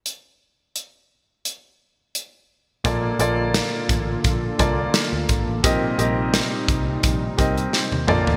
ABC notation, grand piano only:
X:1
M:4/4
L:1/16
Q:"Swing 16ths" 1/4=86
K:Bb
V:1 name="Grand piano"
z16 | [B,FAd]2 [B,FAd]6 z2 [B,FAd]4- [B,FAd] z | [CGBe]2 [CGBe]6 z2 [CGBe]4 [B,FAd]2 |]
V:2 name="Grand piano" clef=bass
z16 | B,,6 z8 z2 | B,,6 z8 z2 |]